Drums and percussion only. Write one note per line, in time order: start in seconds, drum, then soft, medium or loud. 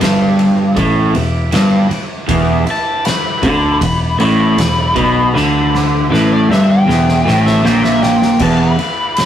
0.01 snare loud
0.01 ride medium
0.39 ride medium
0.77 kick loud
0.77 ride medium
1.15 ride medium
1.52 snare loud
1.52 ride medium
1.91 ride medium
2.29 kick loud
2.29 ride medium
2.67 ride medium
3.05 snare loud
3.05 ride loud
3.43 kick medium
3.43 ride medium
3.81 kick medium
3.81 ride medium
4.20 ride medium
4.58 snare loud
4.58 ride medium
4.96 kick loud
4.96 ride medium
5.36 snare medium
5.75 snare medium
6.14 snare medium
6.52 snare medium
6.89 snare medium
7.09 snare medium
7.28 snare medium
7.47 snare medium
7.65 snare medium
7.84 snare medium
8.03 snare loud
8.22 snare medium
8.39 kick loud
8.39 crash loud
8.79 ride medium
9.17 snare loud
9.17 ride loud